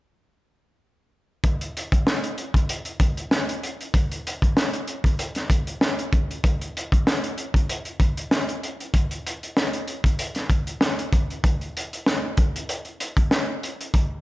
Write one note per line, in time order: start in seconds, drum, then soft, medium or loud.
1.44 kick loud
1.44 closed hi-hat medium
1.61 closed hi-hat medium
1.77 closed hi-hat medium
1.92 kick loud
1.92 closed hi-hat medium
2.07 snare loud
2.24 closed hi-hat medium
2.38 closed hi-hat medium
2.54 kick medium
2.54 closed hi-hat medium
2.69 closed hi-hat loud
2.85 closed hi-hat medium
3.00 kick loud
3.00 closed hi-hat medium
3.17 closed hi-hat medium
3.31 snare loud
3.49 closed hi-hat medium
3.63 closed hi-hat medium
3.81 closed hi-hat soft
3.94 kick loud
3.94 closed hi-hat medium
4.12 closed hi-hat medium
4.27 closed hi-hat medium
4.42 kick medium
4.42 closed hi-hat soft
4.57 snare loud
4.73 closed hi-hat medium
4.88 closed hi-hat medium
5.04 kick medium
5.04 closed hi-hat medium
5.19 closed hi-hat loud
5.35 snare soft
5.35 closed hi-hat medium
5.50 kick loud
5.50 closed hi-hat medium
5.67 closed hi-hat soft
5.81 snare loud
5.99 closed hi-hat medium
6.13 kick loud
6.13 closed hi-hat medium
6.31 closed hi-hat soft
6.44 kick loud
6.44 closed hi-hat medium
6.61 closed hi-hat medium
6.77 closed hi-hat medium
6.92 kick loud
6.92 closed hi-hat medium
7.07 snare loud
7.24 closed hi-hat medium
7.38 closed hi-hat medium
7.54 kick medium
7.54 closed hi-hat medium
7.70 closed hi-hat loud
7.85 closed hi-hat medium
8.00 kick loud
8.00 closed hi-hat medium
8.17 closed hi-hat medium
8.31 snare loud
8.49 closed hi-hat medium
8.63 closed hi-hat medium
8.80 closed hi-hat soft
8.94 kick loud
8.94 closed hi-hat medium
9.11 closed hi-hat medium
9.27 closed hi-hat medium
9.43 closed hi-hat soft
9.57 snare loud
9.73 closed hi-hat medium
9.88 closed hi-hat medium
10.04 kick medium
10.04 closed hi-hat medium
10.19 closed hi-hat loud
10.35 snare soft
10.35 closed hi-hat medium
10.50 kick loud
10.50 closed hi-hat medium
10.67 closed hi-hat medium
10.81 snare loud
10.99 closed hi-hat medium
11.13 kick loud
11.13 closed hi-hat medium
11.30 closed hi-hat soft
11.44 kick loud
11.44 closed hi-hat medium
11.61 closed hi-hat soft
11.77 closed hi-hat medium
11.93 closed hi-hat medium
12.06 snare loud
12.37 kick loud
12.37 closed hi-hat medium
12.56 closed hi-hat medium
12.69 closed hi-hat loud
12.85 closed hi-hat soft
13.00 closed hi-hat medium
13.17 kick medium
13.17 closed hi-hat medium
13.31 snare loud
13.63 closed hi-hat medium
13.81 closed hi-hat soft
13.94 kick loud
13.94 closed hi-hat medium